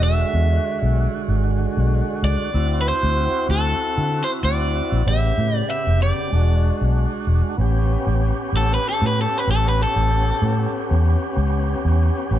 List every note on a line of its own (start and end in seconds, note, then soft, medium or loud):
0.00 0.23 E1 medium
0.00 2.50 D3 medium
0.00 2.49 G#3 medium
0.00 2.51 F#4 medium
0.00 1.50 E5 medium
0.34 0.57 E2 medium
0.82 1.06 B1 loud
1.28 1.65 G#1 medium
1.50 2.24 D5 medium
1.77 2.01 B1 medium
2.23 2.36 C#2 medium
2.23 2.81 D5 medium
2.52 2.91 D2 loud
2.52 5.02 C4 medium
2.52 5.02 E4 medium
2.52 5.03 F#4 medium
2.81 2.87 B4 medium
2.89 3.46 C5 medium
3.03 3.27 D2 medium
3.49 3.73 D2 medium
3.49 4.26 A4 medium
3.98 4.22 D3 medium
4.24 4.30 C5 medium
4.43 4.80 D2 medium
4.43 5.08 D5 medium
4.92 5.03 A#1 medium
5.05 5.30 A1 loud
5.05 6.30 C#3 medium
5.05 6.29 B3 medium
5.05 6.31 G4 medium
5.05 5.57 E5 medium
5.38 5.62 A2 medium
5.57 5.69 D5 medium
5.71 5.99 E5 medium
5.87 6.11 F1 medium
6.03 7.24 D5 medium
6.31 6.69 E1 medium
6.31 7.55 G#3 medium
6.31 7.56 D4 medium
6.35 7.57 F#4 medium
6.81 7.05 B1 medium
7.27 7.40 E1 medium
7.57 7.95 A1 loud
7.57 12.39 B3 medium
7.57 12.39 C#4 medium
7.57 12.39 G4 medium
8.07 8.31 A1 medium
8.53 8.77 A1 medium
8.57 8.72 A4 medium
8.75 8.86 B4 medium
8.89 9.04 A4 medium
9.02 9.26 A2 medium
9.07 9.18 B4 medium
9.21 9.38 A4 medium
9.38 9.49 B4 medium
9.48 9.85 A1 medium
9.48 9.66 A4 medium
9.69 9.81 B4 medium
9.83 11.03 A4 medium
9.96 10.31 A1 medium
10.42 10.66 A2 medium
10.91 11.15 E2 medium
11.37 11.74 C#2 medium
11.85 12.09 E2 medium
12.31 12.39 A1 medium